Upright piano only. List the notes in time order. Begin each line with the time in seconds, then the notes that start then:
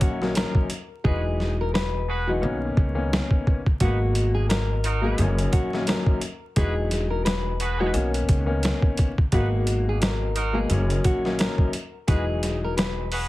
Already playing: F#2 D#3 F#3 A#3 C#4
0.22 F#2 D#3 F#3 A#3 C#4
1.04 E3 F#3 G#3 D#4
2.28 E3 F#3 G#3 D#4
2.41 D#3 A#3 B3 C#4
2.94 D#3 A#3 B3 C#4
3.81 B2 F#3 G#3 A#3
5.01 B2 F#3 G#3 A#3
5.20 F#2 D#3 F#3 A#3 C#4
5.74 F#2 D#3 F#3 A#3 C#4
6.56 E3 F#3 G#3 D#4
7.80 E3 F#3 G#3 D#4
7.93 D#3 A#3 B3 C#4
8.46 D#3 A#3 B3 C#4
9.33 B2 F#3 G#3 A#3
10.53 B2 F#3 G#3 A#3
10.71 F#2 D#3 F#3 A#3 C#4
11.25 F#2 D#3 F#3 A#3 C#4
12.07 E3 F#3 G#3 D#4